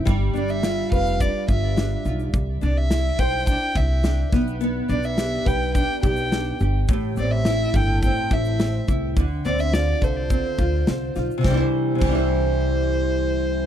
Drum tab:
CC |----------------|----------------|----------------|----------------|
SH |x-xxx-xxx-x-x-xx|x-x-x-x-x-x-x-xx|x-xxx-x-x-xxx-x-|x-x-x-x-x-xxx-x-|
SD |----o-------o---|----o-------o-o-|----o-------o---|----o-------o---|
BD |o-----o-o-o-----|o-----o-o-o---o-|------o-o-o-----|o-----o-o-o---o-|

CC |----------------|----x-----------|
SH |x-xxx-x-x-x-x-xx|----------------|
SD |----o-------o-o-|o---------------|
BD |o-----o-o-o-----|o---o-----------|